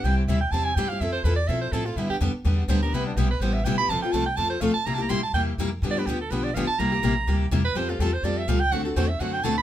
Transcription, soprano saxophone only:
0.04 0.17 G5 loud
0.18 0.30 C5 medium
0.28 0.40 E5 medium
0.41 0.53 G5 medium
0.52 0.66 A5 loud
0.64 0.77 G#5 loud
0.75 0.90 G5 medium
0.89 1.02 F5 loud
1.01 1.12 E5 medium
1.12 1.25 C5 medium
1.24 1.36 B4 medium
1.36 1.49 D5 medium
1.48 1.61 E5 loud
1.61 1.74 C5 medium
1.72 1.87 A4 medium
1.85 1.98 F4 medium
1.97 2.10 E4 medium
2.10 2.17 G4 medium
2.69 2.81 C5 medium
2.83 2.96 A#4 loud
2.94 3.06 B4 loud
3.07 3.19 D4 medium
3.17 3.30 G4 medium
3.31 3.42 B4 medium
3.41 3.55 C5 medium
3.54 3.66 E5 medium
3.65 3.77 G5 medium
3.78 3.91 B5 loud
3.89 4.02 A5 loud
4.02 4.14 G5 medium
4.13 4.25 A5 loud
4.26 4.38 G5 loud
4.37 4.49 A5 loud
4.50 4.63 C5 medium
4.61 4.73 F5 medium
4.74 4.88 A5 loud
4.86 4.96 A#5 medium
4.94 5.04 A5 medium
5.02 5.11 A#5 medium
5.10 5.23 C6 loud
5.23 5.33 A5 loud
5.34 5.42 G5 medium
5.91 6.00 D5 medium
5.99 6.08 B4 medium
6.07 6.20 G4 medium
6.21 6.32 A4 medium
6.31 6.45 B4 medium
6.44 6.56 D5 medium
6.55 6.67 F5 medium
6.67 6.81 A5 loud
6.79 7.51 A#5 loud
7.65 7.78 B4 loud
7.76 7.91 C5 medium
7.90 8.02 F4 medium
8.00 8.15 A4 medium
8.13 8.26 C5 medium
8.24 8.39 D5 medium
8.38 8.50 E5 loud
8.48 8.61 F5 medium
8.60 8.73 G5 loud
8.72 8.84 F#5 loud
8.85 8.98 A4 medium
8.96 9.09 C5 medium
9.08 9.22 E5 medium
9.20 9.35 F#5 loud
9.33 9.45 G5 loud
9.44 9.57 A5 loud
9.58 9.62 B5 loud

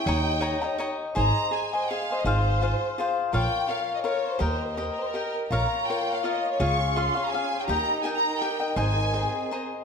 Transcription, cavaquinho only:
0.07 0.39 C#5 medium
0.07 0.40 D#5 medium
0.07 0.41 G5 medium
0.07 0.41 A#5 loud
0.40 0.61 C#5 medium
0.40 0.61 D#5 medium
0.40 0.61 G5 medium
0.40 0.60 A#5 medium
0.62 0.78 D#5 soft
0.62 0.79 G5 soft
0.62 0.79 A#5 medium
0.78 1.15 C#5 medium
0.78 1.15 D#5 medium
0.78 1.15 G5 medium
0.78 1.16 A#5 medium
1.15 1.50 G#4 medium
1.15 1.50 C5 medium
1.15 1.51 D#5 medium
1.15 1.52 G#5 medium
1.51 1.71 G#4 medium
1.51 1.71 C5 medium
1.51 1.72 D#5 medium
1.51 1.72 G#5 medium
1.73 1.89 C5 soft
1.73 1.90 D#5 soft
1.73 1.89 G#5 soft
1.91 2.09 G#4 medium
1.91 2.09 C5 medium
1.91 2.09 D#5 medium
1.91 2.09 G#5 medium
2.11 2.25 C5 soft
2.11 2.26 D#5 soft
2.11 2.26 G#5 soft
2.25 2.60 F4 medium
2.25 2.61 G#4 medium
2.25 2.61 C5 medium
2.25 2.62 F5 medium
2.61 2.97 F4 medium
2.61 2.97 G#4 medium
2.61 2.98 C5 medium
2.61 2.98 F5 medium
2.98 3.32 F4 medium
2.98 3.32 G#4 medium
2.98 3.34 C5 medium
2.98 3.33 F5 medium
3.33 3.67 F4 medium
3.33 3.69 A#4 medium
3.33 3.68 C#5 medium
3.33 3.69 F5 medium
3.68 4.03 F4 medium
3.68 4.04 A#4 medium
3.68 4.03 C#5 medium
3.68 4.04 F5 medium
4.04 4.38 F4 medium
4.04 4.39 A#4 medium
4.04 4.40 C#5 medium
4.04 4.40 F5 medium
4.39 4.76 G4 medium
4.39 4.76 A#4 medium
4.39 4.77 D#5 medium
4.39 4.77 G5 medium
4.77 5.13 G4 medium
4.77 5.13 A#4 medium
4.77 5.14 D#5 medium
4.77 5.14 G5 medium
5.14 5.50 G4 soft
5.14 5.51 A#4 medium
5.14 5.51 D#5 medium
5.14 5.52 G5 medium
5.51 5.88 F4 medium
5.51 5.89 A#4 medium
5.51 5.89 C#5 medium
5.51 5.89 F5 medium
5.90 6.23 F4 medium
5.90 6.24 A#4 medium
5.90 6.24 C#5 medium
5.90 6.24 F5 medium
6.24 6.59 F4 medium
6.24 6.59 A#4 medium
6.24 6.59 C#5 medium
6.24 6.59 F5 medium
6.60 6.95 F4 medium
6.60 6.95 G#4 medium
6.60 6.96 C#5 medium
6.60 6.96 F5 medium
6.96 7.16 F4 medium
6.96 7.15 G#4 medium
6.96 7.15 C#5 medium
6.96 7.13 F5 medium
7.14 7.32 G#4 soft
7.14 7.33 C#5 soft
7.14 7.32 F5 soft
7.33 7.67 F4 medium
7.33 7.69 G#4 medium
7.33 7.69 C#5 medium
7.33 7.69 F5 medium
7.68 8.02 G4 medium
7.68 8.03 A#4 medium
7.68 8.04 D#5 medium
7.68 8.04 G5 medium
8.03 8.40 G4 medium
8.03 8.40 A#4 medium
8.03 8.41 D#5 medium
8.03 8.41 G5 medium
8.41 8.60 G4 medium
8.41 8.60 A#4 medium
8.41 8.59 D#5 medium
8.41 8.59 G5 medium
8.60 8.76 A#4 soft
8.60 8.76 D#5 soft
8.60 8.77 G5 medium
8.76 9.12 C5 medium
8.76 9.12 D#5 medium
8.76 9.13 G#5 medium
8.76 9.14 A#5 medium
9.13 9.50 C5 medium
9.13 9.51 D#5 medium
9.13 9.51 G#5 medium
9.13 9.51 A#5 medium
9.51 9.84 C5 medium
9.51 9.84 D#5 medium
9.51 9.84 G#5 medium
9.51 9.84 A#5 medium

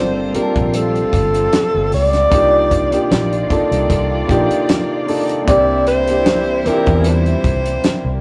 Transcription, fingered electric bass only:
0.00 0.31 G1 medium
0.35 muted fingered electric bass stroke soft
0.56 1.02 A#1 medium
1.13 1.45 G1 medium
1.74 1.89 G1 medium
1.93 2.24 C#2 medium
2.32 2.94 C2 medium
3.11 3.42 A#1 medium
3.71 3.86 C2 loud
3.90 4.21 C2 medium
4.30 4.46 A#1 medium
5.47 6.62 C2 medium
6.66 muted fingered electric bass stroke soft
6.87 7.33 E2 medium
7.44 7.76 C2 medium
8.05 8.19 C2 loud

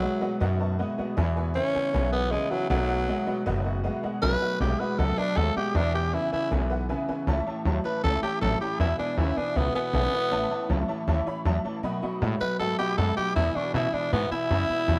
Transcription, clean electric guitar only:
0.03 0.20 B2 medium
0.03 0.20 G#3 medium
0.22 0.39 B2 medium
0.22 0.39 G#3 medium
0.41 0.76 B2 medium
0.41 0.76 F#3 medium
0.79 0.96 B2 medium
0.79 0.97 G#3 medium
0.98 1.15 B2 medium
0.98 1.16 G#3 medium
1.17 1.52 E2 medium
1.17 1.52 B2 medium
1.55 1.73 E2 medium
1.55 1.73 C#3 loud
1.75 1.92 E2 medium
1.75 1.92 C#3 medium
1.94 2.28 E2 medium
1.94 2.28 B2 medium
2.32 2.49 E2 medium
2.32 2.49 C#3 medium
2.51 2.68 E2 medium
2.51 2.68 C#3 medium
2.70 3.04 B2 medium
2.70 3.05 F#3 medium
3.08 3.25 B2 medium
3.08 3.26 G#3 loud
3.27 3.44 B2 medium
3.27 3.45 G#3 medium
3.46 3.80 B2 medium
3.46 3.81 F#3 medium
3.84 4.01 B2 medium
3.84 4.02 G#3 medium
4.03 4.21 B2 medium
4.03 4.21 G#3 medium
4.22 4.57 B2 medium
4.22 4.57 F#3 medium
4.60 4.78 B2 medium
4.60 4.78 G#3 medium
4.80 4.97 B2 medium
4.80 4.97 G#3 medium
4.99 5.33 B2 medium
4.99 5.34 F#3 medium
5.37 5.54 B2 medium
5.37 5.54 G#3 medium
5.56 5.73 B2 medium
5.56 5.74 G#3 medium
5.75 6.10 E2 medium
5.75 6.10 B2 medium
6.13 6.30 E2 medium
6.13 6.31 C#3 loud
6.32 6.49 E2 medium
6.32 6.50 C#3 medium
6.51 6.86 E2 medium
6.51 6.86 B2 medium
6.89 7.07 E2 medium
6.89 7.07 C#3 loud
7.08 7.26 E2 medium
7.08 7.26 C#3 medium
7.28 7.45 A2 medium
7.28 7.45 E3 medium
7.47 7.64 A2 medium
7.47 7.64 E3 medium
7.65 7.83 A2 medium
7.65 7.83 F#3 loud
7.84 8.02 A2 medium
7.84 8.02 E3 medium
8.03 8.21 A2 medium
8.03 8.21 E3 medium
8.22 8.40 A2 medium
8.22 8.40 E3 medium
8.41 8.59 A2 medium
8.41 8.59 F#3 medium
8.60 8.78 A2 medium
8.60 8.78 E3 medium
8.79 8.97 E2 medium
8.79 8.97 B2 medium
8.99 9.16 E2 medium
8.99 9.16 B2 medium
9.18 9.35 E2 medium
9.18 9.35 C#3 loud
9.36 9.54 E2 medium
9.36 9.54 B2 medium
9.56 9.73 E2 medium
9.56 9.73 B2 loud
9.74 9.92 E2 medium
9.74 9.92 B2 medium
9.93 10.11 E2 medium
9.93 10.11 C#3 loud
10.12 10.30 E2 medium
10.12 10.30 B2 medium
10.32 10.49 A2 medium
10.32 10.49 E3 loud
10.50 10.68 A2 medium
10.50 10.68 E3 medium
10.69 10.87 A2 medium
10.69 10.87 F#3 medium
10.88 11.06 A2 medium
10.88 11.06 E3 medium
11.07 11.25 A2 medium
11.07 11.25 E3 medium
11.26 11.44 A2 medium
11.26 11.44 E3 medium
11.46 11.63 A2 medium
11.46 11.63 F#3 medium
11.65 11.82 A2 medium
11.65 11.82 E3 medium
11.83 12.01 B2 medium
11.83 12.01 F#3 medium
12.03 12.20 B2 medium
12.03 12.20 F#3 medium
12.22 12.39 B2 medium
12.22 12.39 G#3 medium
12.41 12.58 B2 medium
12.41 12.58 F#3 medium
12.60 12.77 B2 medium
12.60 12.77 F#3 loud
12.79 12.96 B2 medium
12.79 12.96 F#3 medium
12.98 13.15 B2 medium
12.98 13.15 G#3 medium
13.17 13.34 B2 medium
13.17 13.35 F#3 medium
13.36 13.53 E2 medium
13.36 13.54 B2 medium
13.55 13.72 E2 medium
13.55 13.73 B2 medium
13.75 13.92 E2 medium
13.75 13.92 C#3 medium
13.94 14.10 E2 medium
13.94 14.11 B2 medium
14.12 14.29 E2 medium
14.12 14.30 B2 loud
14.32 14.48 E2 medium
14.32 14.49 B2 medium
14.50 14.67 E2 medium
14.50 14.67 C#3 medium
14.70 14.86 E2 medium
14.70 14.87 B2 medium
14.89 14.99 E2 medium
14.89 14.99 B2 medium

